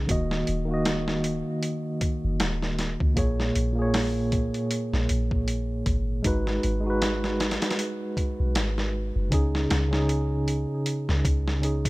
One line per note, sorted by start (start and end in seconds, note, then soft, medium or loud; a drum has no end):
0.07 0.44 D#1 medium
0.07 0.63 D#3 medium
0.07 0.64 A#3 medium
0.07 0.65 F#4 medium
0.07 kick loud
0.07 closed hi-hat medium
0.11 0.65 D#5 medium
0.31 snare soft
0.47 1.43 D#1 medium
0.47 closed hi-hat medium
0.65 3.11 D#3 medium
0.65 3.12 A#3 medium
0.71 3.13 F#4 medium
0.71 3.15 D#5 medium
0.85 snare loud
0.85 closed hi-hat medium
1.08 snare medium
1.24 closed hi-hat medium
1.63 closed hi-hat medium
2.01 kick medium
2.01 closed hi-hat medium
2.24 2.42 F#1 medium
2.40 2.97 D#1 loud
2.40 snare loud
2.40 closed hi-hat medium
2.62 snare soft
2.79 snare soft
2.79 closed hi-hat medium
3.00 3.15 C#2 loud
3.00 kick medium
3.14 3.52 A#1 medium
3.14 3.71 A#2 medium
3.14 3.72 A#3 medium
3.14 3.72 G#4 medium
3.14 kick loud
3.14 closed hi-hat medium
3.19 3.73 C#5 medium
3.40 snare soft
3.55 4.50 A#1 medium
3.55 closed hi-hat medium
3.72 6.18 A#2 medium
3.72 6.20 A#3 medium
3.79 6.21 G#4 medium
3.79 6.23 C#5 loud
3.94 snare loud
3.94 open hi-hat medium
4.32 kick medium
4.32 closed hi-hat medium
4.54 closed hi-hat soft
4.71 closed hi-hat medium
4.93 5.07 A#1 medium
4.93 snare soft
5.09 5.83 A#1 medium
5.09 closed hi-hat medium
5.31 kick medium
5.48 closed hi-hat medium
5.86 6.21 G#1 loud
5.86 kick medium
5.86 closed hi-hat medium
6.23 6.59 G#1 medium
6.23 6.79 G#3 medium
6.23 6.80 D#4 medium
6.23 6.80 F#4 medium
6.23 kick loud
6.23 closed hi-hat medium
6.27 6.81 B4 loud
6.47 snare soft
6.63 7.58 G#1 medium
6.63 closed hi-hat medium
6.81 9.26 G#3 medium
6.81 9.28 D#4 medium
6.87 9.29 F#4 medium
6.87 9.31 B4 loud
7.02 snare loud
7.02 closed hi-hat medium
7.24 snare soft
7.40 snare medium
7.40 closed hi-hat medium
7.51 snare medium
7.51 closed hi-hat medium
7.62 snare medium
7.62 closed hi-hat medium
7.71 snare medium
7.71 closed hi-hat medium
7.79 closed hi-hat medium
8.17 kick medium
8.17 closed hi-hat medium
8.40 8.57 B1 medium
8.55 9.12 G#1 loud
8.55 snare loud
8.55 closed hi-hat medium
8.78 snare soft
9.16 9.30 F#1 loud
9.30 9.67 C#2 medium
9.30 9.86 C#3 medium
9.30 9.87 C#4 medium
9.30 9.88 D#4 medium
9.30 kick loud
9.30 closed hi-hat medium
9.34 9.88 G#4 loud
9.55 snare soft
9.70 10.66 C#2 medium
9.70 snare loud
9.70 closed hi-hat medium
9.88 11.57 C#3 medium
9.88 11.59 C#4 medium
9.93 11.60 D#4 medium
9.93 snare medium
9.97 11.62 G#4 medium
10.09 closed hi-hat medium
10.48 closed hi-hat medium
10.86 closed hi-hat medium
11.09 11.23 C#2 medium
11.09 snare soft
11.25 11.89 C#2 medium
11.25 kick loud
11.25 closed hi-hat medium
11.48 snare soft
11.60 11.89 C#3 medium
11.60 11.89 C#4 medium
11.60 11.89 D#4 medium
11.60 closed hi-hat medium
11.65 11.89 G#4 medium
11.85 kick loud
11.85 closed hi-hat medium